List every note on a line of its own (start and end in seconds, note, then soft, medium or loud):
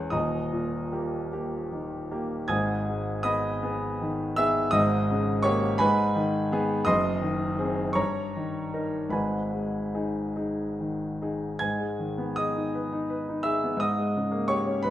0.00 0.16 E2 medium
0.00 0.17 G#3 medium
0.00 0.17 C#4 medium
0.00 0.16 G#4 medium
0.00 0.16 C#5 medium
0.00 0.16 G#5 medium
0.00 0.12 C#6 loud
0.10 2.46 D#1 medium
0.10 2.47 D#2 medium
0.10 1.29 D#5 medium
0.10 1.29 A#5 medium
0.10 1.32 D#6 medium
0.52 1.17 A#2 soft
0.92 1.29 A#3 soft
0.92 1.29 G4 medium
1.33 1.69 A#3 soft
1.33 1.69 G4 medium
1.72 2.35 D#3 soft
2.11 2.47 A#3 medium
2.11 2.47 G4 medium
2.48 4.71 G#1 medium
2.48 4.71 G#2 medium
2.48 3.23 G#5 medium
2.48 3.22 D#6 medium
2.48 3.26 G#6 medium
2.89 3.50 G#3 soft
3.23 3.60 B3 medium
3.23 3.61 G#4 medium
3.23 4.35 D#5 medium
3.23 4.34 B5 medium
3.23 4.38 D#6 loud
3.63 3.98 B3 medium
3.63 3.98 G#4 medium
4.01 4.61 D#3 medium
4.36 4.71 B3 medium
4.36 4.72 G#4 medium
4.36 4.73 E5 medium
4.36 4.74 E6 loud
4.71 5.77 G#1 medium
4.71 5.77 G#2 medium
4.71 5.41 D#5 medium
4.71 5.44 D#6 loud
5.10 5.67 C#3 medium
5.43 5.78 A#3 medium
5.43 5.77 G4 medium
5.43 5.78 C#5 medium
5.43 5.80 C#6 loud
5.78 6.84 G#2 medium
5.78 6.83 B4 medium
5.78 6.82 G#5 medium
5.78 6.86 B5 loud
6.15 6.73 D#3 medium
6.52 6.84 B3 medium
6.52 6.84 G#4 medium
6.85 7.93 F#1 medium
6.85 7.94 F#2 medium
6.85 7.93 D#5 medium
6.85 7.93 C6 medium
6.85 7.96 D#6 loud
7.21 7.81 D#3 medium
7.59 7.93 C4 medium
7.59 7.93 G#4 medium
7.93 9.10 G2 medium
7.93 9.09 C#5 medium
7.93 9.09 A#5 medium
7.93 9.12 C#6 loud
8.36 8.98 D#3 medium
8.74 9.09 D#4 medium
8.74 9.10 A#4 medium
9.10 11.56 G#1 medium
9.10 11.55 G#2 medium
9.10 10.34 B4 medium
9.10 10.34 G#5 medium
9.10 10.37 B5 medium
9.54 10.22 G#3 soft
9.94 10.34 D#4 soft
9.94 10.34 G#4 medium
10.36 10.75 D#4 soft
10.36 10.76 G#4 soft
10.80 11.46 D#3 soft
11.22 11.57 D#4 soft
11.22 11.58 G#4 soft
11.59 13.75 G#2 medium
11.59 12.32 G#5 medium
11.59 12.35 G#6 medium
11.80 12.10 G#3 soft
11.99 12.29 D#3 soft
12.18 12.47 B3 medium
12.36 12.67 G#4 soft
12.36 13.42 D#5 medium
12.36 13.45 D#6 loud
12.56 12.84 D#4 soft
12.75 13.03 B4 medium
12.92 13.21 D#4 medium
13.10 13.38 B4 medium
13.29 13.56 D#4 medium
13.43 13.73 G#4 medium
13.43 13.77 E5 medium
13.43 13.79 E6 loud
13.64 13.81 B3 medium
13.77 14.79 G#2 medium
13.77 14.49 D#6 medium
13.81 14.46 D#5 medium
13.98 14.25 G#3 medium
14.17 14.43 C#3 medium
14.31 14.59 A#3 medium
14.48 14.77 G4 medium
14.48 14.81 C#5 medium
14.48 14.83 C#6 loud
14.67 14.84 C#4 medium
14.83 14.90 G#2 medium
14.83 14.90 B4 medium
14.83 14.90 B5 loud